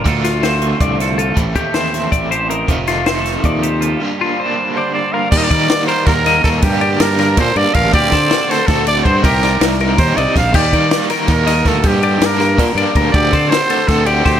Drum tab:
CC |x------|-------|-------|-------|
RD |-------|-------|-------|-------|
HH |xxxxxxx|xxxxxxx|xxxxxxx|-------|
SD |-oo--o-|--oo---|-ooo---|-------|
BD |o---o--|oo--o--|o---o--|-------|

CC |x------|-------|-------|-------|
RD |-xxxxxx|xxxxxxx|xxxxxxx|xxxxxxx|
HH |-------|-------|-------|-------|
SD |--o-ooo|--oo---|-oooo--|-oo-o-o|
BD |oo--o-o|o---o-o|oo--o-o|o---o-o|

CC |x------|-------|-------|
RD |-xxxxxx|xxxxxxx|xxxxxxx|
HH |-------|-------|-------|
SD |--ooooo|--oo---|--o-o-o|
BD |oo--o-o|o---o-o|oo--o-o|